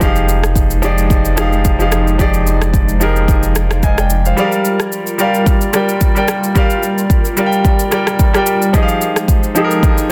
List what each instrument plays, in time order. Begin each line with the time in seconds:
Already playing: grand piano A#5
0.00 sub bass F1, grand piano F3 D#4 G4 G#4 F5, analog synth pad F3 G#3 D#4, kick, shaker
0.16 shaker
0.29 shaker
0.44 cross-stick, shaker
0.55 kick, shaker
0.71 shaker
0.82 grand piano F3 D#4 G4 G#4 D5, shaker
0.98 shaker
1.10 kick, shaker
1.25 shaker
1.36 grand piano F3 D#4 G4 G#4 F5, cross-stick, shaker
1.53 shaker
1.65 kick, shaker
1.79 grand piano F3 D#4 G4 G#4 F5, shaker
1.92 cross-stick, shaker
2.07 shaker
2.18 grand piano F3 D#4 G4 G#4 D5, kick, shaker
2.34 shaker
2.47 shaker
2.62 cross-stick, shaker
2.74 kick, shaker
2.89 shaker
3.00 grand piano F3 D#4 G4 G#4 A#4, shaker
3.16 shaker
3.28 kick, shaker
3.43 shaker
3.55 cross-stick, shaker
3.71 grand piano C5 F5, cross-stick, shaker
3.83 grand piano D#5 G#5, kick, shaker
3.98 grand piano D5 G5, cross-stick, shaker
4.10 shaker
4.25 grand piano C5 F5, shaker
4.36 grand piano G3 G4 G#4 D5 F5, analog synth pad G3 F4 A#4, shaker
4.45 grand piano A#4
4.52 shaker
4.65 shaker
4.80 cross-stick, shaker
4.92 shaker
5.07 shaker
5.18 grand piano G3 G4 A#4 D5 F5, shaker
5.34 shaker
5.46 kick, shaker
5.61 shaker
5.73 grand piano G3 G4 A#4 D5 G5, cross-stick, shaker
5.89 shaker
6.01 kick, shaker
6.15 grand piano G3 G4 A#4 D5 G5, shaker
6.28 cross-stick, shaker
6.44 shaker
6.54 grand piano G3 G4 A#4 D5 F5, kick, shaker
6.70 shaker
6.83 shaker
6.98 shaker
7.10 kick, shaker
7.25 shaker
7.37 grand piano G3 G4 A#4 D5 F5, shaker
7.46 grand piano G5
7.52 shaker
7.65 kick, shaker
7.79 shaker
7.91 grand piano G3 G4 A#4 D5 G5, cross-stick, shaker
8.07 cross-stick, shaker
8.19 kick, shaker
8.33 grand piano G3 G4 A#4 D5 G5, cross-stick, shaker
8.46 shaker
8.62 shaker
8.73 grand piano F3 D#4 G4 G#4 D#5, analog synth pad F3 G#3 D#4, kick, shaker
8.83 grand piano F5
8.88 shaker
9.01 shaker
9.16 cross-stick, shaker
9.28 kick, shaker
9.43 shaker
9.55 grand piano F3 D#4 G4 G#4 A4, shaker
9.64 grand piano A#4
9.71 shaker
9.83 kick, shaker
9.98 shaker